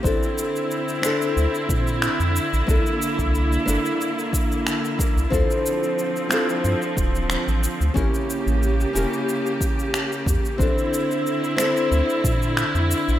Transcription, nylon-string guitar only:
\new Staff \with { instrumentName = "Nylon-string guitar" } { \time 4/4 \key bes \lydian \tempo 4 = 91 <c' d' e' a'>4. <c' d' e' a'>2~ <c' d' e' a'>8 | <bes d' e' a'>4. <bes d' e' a'>2 <bes d' e' bes'>8 | <c' e' f' a'>4. <c' e' f' a'>2~ <c' e' f' a'>8 | <cis' e' g' bes'>4. <cis' e' g' bes'>2~ <cis' e' g' bes'>8 |
<c' d' e' a'>4. <c' d' e' a'>2~ <c' d' e' a'>8 | }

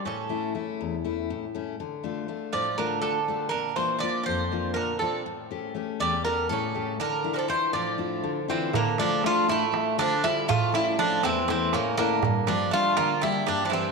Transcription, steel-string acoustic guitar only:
\new Staff \with { instrumentName = "Steel-string acoustic guitar" } { \time 7/8 \key d \minor \tempo 4 = 121 a,8 <a cis' e'>8 <a cis' e'>8 e,8 <a cis' e'>8 a,8 <a cis' e'>8 | d8 <a d' f'>8 <a d' f'>8 a,8 <a d' f'>8 d8 <a d' f'>8 | bes,8 <bes d' f'>8 <bes d' f'>8 f,8 <bes d' f'>8 bes,8 <bes d' f'>8 | a,8 <a cis' g'>8 <a cis' g'>8 e,8 <a cis' g'>8 a,8 <a cis' g'>8 |
d8 <d' e' f'>8 <d' e' f'>8 a,8 <d' e' f'>8 d8 <d' e' f'>8 | d8 <a d' f'>8 <a d' f'>8 a,8 <a d' f'>8 d8 <a d' f'>8 | a,8 <a cis' e'>8 <a cis' e'>8 e,8 <a cis' e'>8 a,8 <a cis' e'>8 | g,8 <g bes d'>8 <g bes d'>8 d8 <g bes d'>8 g,8 <g bes d'>8 | }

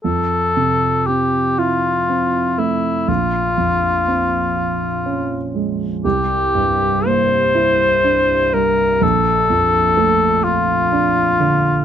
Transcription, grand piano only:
\new Staff \with { instrumentName = "Grand piano" } { \time 6/8 \key f \major \tempo 4. = 40 f,8 c8 c'8 e'8 c'8 a8 | bes,,8 f,8 c'8 f'8 des'8 aes8 | c,8 g,8 bes8 e'8 d'8 g8 | bes,,8 f,8 a8 f'8 d'8 d8 | }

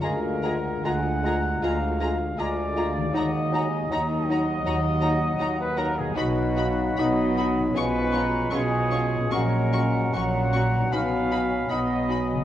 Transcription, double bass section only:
\new Staff \with { instrumentName = "Double bass section" } { \clef bass \time 4/4 \key b \lydian \tempo 4 = 78 d,4 d,4 d,4 d,4 | dis,4 dis,4 dis,4 dis,4 | b,,4 b,,4 b,,4 b,,4 | ais,,4 ais,,4 b,,4 b,,4 | }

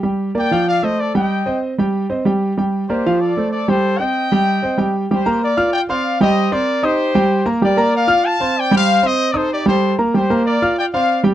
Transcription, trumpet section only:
\new Staff \with { instrumentName = "Trumpet section" } { \time 4/4 \key g \minor \tempo 4 = 190 << { r4 g''4 f''8 ees''8 d''8 g''8~ | g''4 r2. | r4 c''4 d''4 d''8 c''8~ | c''8 g''2. r8 |
c''4 d''4 g''8 f''4 ees''8~ | ees''8 d''4 c''2 r8 | d''4 f''4 a''4 g''8 f''8~ | f''8 ees''8.~ ees''32 d''32 c''8 d''8 c''4 r8 |
c''4 d''4 g''8 f''4 r8 | } \\ { r4 d''4 d''8 c''8 a'8 ees''8~ | ees''4 r2. | r4 g'4 a'4 a'8 a'8~ | a'8 ees''2. r8 |
g'4 bes'4 d''8 d''4 c''8~ | c''8 bes'4 g'2 r8 | bes'4 d''4 f''4 d''8 c''8~ | c''8 c''4 a'8 g'8 a'4 r8 |
g'4 bes'4 d''8 d''4 r8 | } >> }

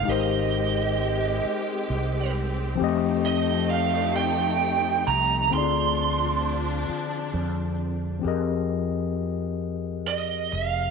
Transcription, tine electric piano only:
\new Staff \with { instrumentName = "Tine electric piano" } { \time 6/8 \key f \dorian \tempo 4. = 44 <aes ees' g' bes' c''>2. | <f a c' g' ees''>2. | <d c' ees' f' aes' d''>2. | <f c' g' aes' bes' ees''>2. | }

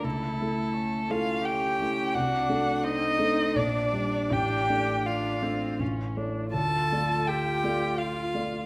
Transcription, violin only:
\new Staff \with { instrumentName = "Violin" } { \time 3/4 \key d \minor \tempo 4 = 85 a'4. f''8 g''4 | fis''4 ees''4 d''4 | g''4 f''4 r4 | a''4 g''4 f''4 | }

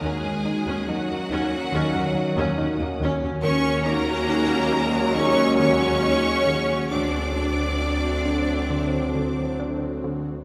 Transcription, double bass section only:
\new Staff \with { instrumentName = "Double bass section" } { \clef bass \time 4/4 \key ees \minor \tempo 4 = 69 ees,16 ees,16 r16 ees,16 ees,16 ees,16 ees,16 r16 ees,16 ees,16 r16 ees,16 ees,16 ees,16 ees,16 ees,16 | ees,1 | d,2.~ d,8. r16 | }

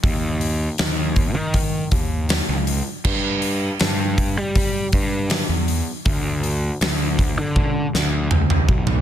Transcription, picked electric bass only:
\new Staff \with { instrumentName = "Picked electric bass" } { \clef bass \time 4/4 \key dis \phrygian \tempo 4 = 80 dis,4 dis,8. dis8. dis,8. cis,8 r16 | g,4 g,8. g8. g,8. e,8 r16 | d,4 d,8. d8. d,8 cis,8 b,,8 | }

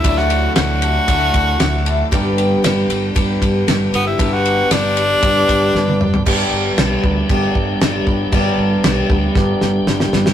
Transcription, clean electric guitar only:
\new Staff \with { instrumentName = "Clean electric guitar" } { \time 4/4 \key g \lydian \tempo 4 = 116 <d fis a d' e'>1 | <g, d g b d' g'>1 | <g, d g b d' g'>1 | <g, d g b d' g'>2 <g, d g b d' g'>2 |
<g, d g b d' g'>2 <g, d g b d' g'>2 | }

